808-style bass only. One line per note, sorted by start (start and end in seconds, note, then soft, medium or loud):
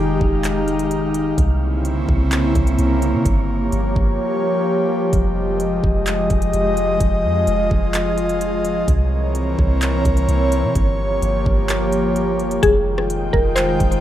0.00 0.20 F1 loud
0.21 1.34 F1 loud
1.38 2.05 C2 loud
2.09 2.53 C2 loud
2.55 2.78 C2 loud
2.79 3.15 C2 loud
3.14 3.25 C3 medium
3.26 3.70 G1 loud
3.73 3.95 G1 loud
3.96 4.18 G1 loud
5.13 5.80 F1 loud
5.84 6.28 F1 loud
6.30 6.53 F1 loud
6.54 6.99 F1 loud
7.00 7.26 F1 loud
7.24 7.46 F2 loud
7.47 7.70 F1 loud
7.71 8.84 F1 loud
8.88 9.55 C2 loud
9.59 10.03 C2 loud
10.05 10.28 C2 loud
10.28 10.65 C2 loud
10.64 10.75 C3 medium
10.76 11.20 G1 loud
11.22 11.45 G1 loud
11.46 12.59 G1 loud
12.63 13.30 F1 loud
13.34 13.78 F1 loud
13.80 14.00 F1 loud